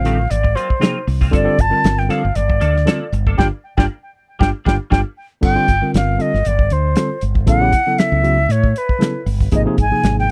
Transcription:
Already playing: A1 F5
0.04 D3 D#3 G3 A3 C4 F4 G4 A4, snare, closed hi-hat
0.18 F4 B4, muted clean electric guitar stroke
0.30 G#1 D5, muted clean electric guitar stroke, closed hi-hat
0.43 muted clean electric guitar stroke, kick
0.55 F#3 A#3 C4 F4 C5, closed hi-hat
0.69 muted clean electric guitar stroke, kick
0.80 C3 F3 F#3 A#3 C4 D#4 F4 G#4, snare, closed hi-hat
0.94 D#4 F#4
1.07 C2, muted clean electric guitar stroke, open hi-hat
1.18 A#3 C4 D#4 F4 G#4, kick
1.31 G1 D3 F3 G3 A#3 C4 D4 F4 A4 D5, kick, closed hi-hat
1.44 D3 G3 C4 F4 A4
1.57 G1 F4 A#4 A5, kick, closed hi-hat
1.69 D3 G3 C4 F4 A#4, muted clean electric guitar stroke
1.84 G1, muted clean electric guitar stroke, snare, closed hi-hat
1.99 G5, muted clean electric guitar stroke, snare
2.08 D3 F3 G3 A#3 C4 D4 F4 A4 F5, snare, closed hi-hat
2.22 G1 F4, muted clean electric guitar stroke
2.35 G1 D5, muted clean electric guitar stroke, closed hi-hat
2.50 muted clean electric guitar stroke, kick
2.60 D2 F3 A#3 D4 A4, closed hi-hat
2.75 muted clean electric guitar stroke, snare
2.85 D3 F3 G3 A#3 C4 D4 F4 A4, snare, closed hi-hat
3.00 F4 A4
3.12 G1, muted clean electric guitar stroke, closed hi-hat
3.27 A#3 D4 F4 A4, kick
3.37 G1 G3 A#3 D4 F4 G4 G5, kick, snare
3.77 G1 G3 A#3 D4 F4 G4 G5, kick, snare
4.39 G1 G3 A#3 D4 F4 G4 G5, kick, snare
4.65 G1 G3 A#3 D4 F4 G4 G5, kick, snare
4.90 G1 G3 A#3 D4 F4 G4 G5, kick, snare
5.41 G1 D3 G3 C4 F4 A4 G5, kick, crash
5.55 D3 G3 C4 F4 G4
5.67 G1 F4 A4, kick, closed hi-hat
5.82 D3 G3 C4 F4 A#4
5.94 G1 F5, snare, closed hi-hat
6.18 D3 G3 C4 F4 A4 D#5, closed hi-hat
6.32 G1 F4 A4, snare
6.45 G1 D5, closed hi-hat
6.59 kick
6.70 D2 C5, closed hi-hat
6.96 D3 G3 C4 F4 A4, snare, closed hi-hat
7.10 F4 A4
7.21 G1, closed hi-hat
7.34 F4 A4, kick
7.46 A1 C#3 F#3 B3 E4 A4 F#5, kick, closed hi-hat
7.60 C#3 F#3 B3 E4 G4
7.73 E4 A4, kick, closed hi-hat
7.87 C#3 F#3 B3 E4 A4
7.98 E5, snare, closed hi-hat
8.12 C#2
8.22 C#3 F#3 B3 E4 F#4, closed hi-hat
8.37 E4 B4
8.49 A2 C#5, closed hi-hat
8.64 kick
8.76 B4, closed hi-hat
8.89 kick
8.99 C#3 F#3 B3 E4 A4, snare, closed hi-hat
9.14 E4 A4
9.26 G1, open hi-hat
9.41 E4 G4, kick
9.52 G#1 C3 F3 A#3 D#4 G#4 D#5, kick, closed hi-hat
9.65 C3 F3 A#3 D#4 G#4
9.77 G#1 D#4 G#4, kick, closed hi-hat
9.81 G#5
9.90 C3 F3 A#3 D#4 G#4
10.04 G#1, snare, closed hi-hat
10.19 G5, snare

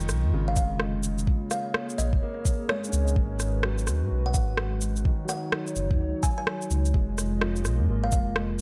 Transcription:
Already playing: F1 D#3 G#3 F4 D#5
0.00 shaker
0.09 B1, cross-stick, shaker
0.24 F2
0.33 G#1 C#3
0.48 F5
0.56 F1 F5, kick, shaker
0.80 cross-stick
1.03 shaker
1.18 shaker
1.27 A#3 G#4 C#5, kick
1.51 F5, cross-stick, shaker
1.74 cross-stick
1.90 shaker
1.98 A#1 D#5, shaker
2.13 F1, kick
2.22 A#3
2.45 kick, shaker
2.69 G#3 C#5, cross-stick
2.84 shaker
2.89 C#4
2.93 C#2, shaker
3.03 D#4
3.08 shaker
3.16 G#1 G#3 F#4 B4, kick
3.40 cross-stick, shaker
3.63 F#3, cross-stick
3.78 shaker
3.87 D#2, cross-stick, shaker
4.02 G#2
4.11 B1
4.26 F#5
4.34 G#1 F#5, kick, shaker
4.57 cross-stick
4.81 shaker
4.96 shaker
5.04 D#3 F#3 D#4 C#5, kick
5.25 F#3
5.29 F#5, cross-stick, shaker
5.52 cross-stick
5.67 shaker
5.76 F#1, shaker
5.91 F#2, kick
6.00 C#2
6.23 G#5, kick, shaker
6.38 G#5
6.47 cross-stick
6.62 shaker
6.71 C#2, shaker
6.85 shaker
6.94 F1 G#3 F4 D#5, kick
7.18 cross-stick, shaker
7.41 F3, cross-stick
7.56 shaker
7.62 B1 G#3, cross-stick, shaker
7.76 F2 A#3
7.88 G#1 A#3
8.04 F5
8.12 F1 F5, kick, shaker
8.36 cross-stick

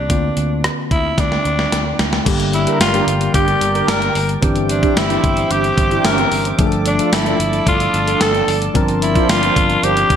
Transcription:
Already playing: D4
0.09 D2 D3 A#3 C4 F4, kick, closed hi-hat
0.37 D2, closed hi-hat
0.64 cross-stick, closed hi-hat
0.91 D2 E4, kick, closed hi-hat
1.18 D2 D4, kick, snare, closed hi-hat
1.32 snare
1.45 D2, closed hi-hat
1.59 snare
1.72 D2, snare, closed hi-hat
1.99 D2, snare, closed hi-hat
2.13 snare
2.25 G1 D3 G3 A#3 G4 A#4 D5 G5 D6, kick, closed hi-hat, crash
2.40 closed hi-hat
2.53 E4, closed hi-hat
2.67 D4 G4 A#4, closed hi-hat
2.80 G1 F4, snare, closed hi-hat, tambourine
2.94 D4 G4 A#4, closed hi-hat
3.07 G1, closed hi-hat
3.21 closed hi-hat
3.34 G1 D4 G4 A#4, kick, closed hi-hat
3.48 closed hi-hat
3.61 G1, closed hi-hat
3.75 D4 G4 A#4, closed hi-hat
3.88 G1 A#4, snare, closed hi-hat, tambourine
4.02 closed hi-hat
4.15 G1, open hi-hat
4.29 closed hi-hat
4.41 G1 E3 C4 D4 G4 C5 E5 G5, kick, closed hi-hat
4.56 closed hi-hat
4.69 D4, closed hi-hat
4.83 D4 E4 G4, kick, closed hi-hat
4.96 G1 E4, snare, closed hi-hat, tambourine
5.10 D4 E4 G4, closed hi-hat
5.24 G1, kick, closed hi-hat
5.37 closed hi-hat
5.51 G1 D4 E4 G4, closed hi-hat
5.64 closed hi-hat
5.78 G1, kick, closed hi-hat
5.91 D4 E4 G4, closed hi-hat
6.04 G1 A#4, snare, closed hi-hat, tambourine
6.18 closed hi-hat
6.32 G1, open hi-hat
6.45 closed hi-hat
6.58 G1 F3 A3 D4 G#4 A4 D5 A5, kick, closed hi-hat
6.67 A4
6.72 closed hi-hat
6.86 D4, closed hi-hat
6.99 D4 F4 A4, closed hi-hat
7.13 G1 E4, snare, closed hi-hat, tambourine
7.26 D4 F4 A4, closed hi-hat
7.40 G1, closed hi-hat
7.53 closed hi-hat
7.67 G1 D4 F4 A4, kick, closed hi-hat
7.80 closed hi-hat
7.94 G1, closed hi-hat
8.07 D4 F4 A4, closed hi-hat
8.21 G1 A4, snare, closed hi-hat, tambourine
8.35 closed hi-hat
8.48 G1, open hi-hat
8.62 closed hi-hat
8.74 G1 F3 C4 D4 A#4 D5 C6, kick, closed hi-hat
8.88 closed hi-hat
9.02 E4, closed hi-hat
9.15 D4 F4 C5, kick, closed hi-hat
9.29 G1 F4, snare, closed hi-hat, tambourine
9.43 D4 F4 C5, closed hi-hat
9.56 G1, kick, closed hi-hat
9.70 closed hi-hat
9.83 G1 D4 F4 G4 C5, closed hi-hat
9.97 closed hi-hat
10.10 G1, kick, closed hi-hat

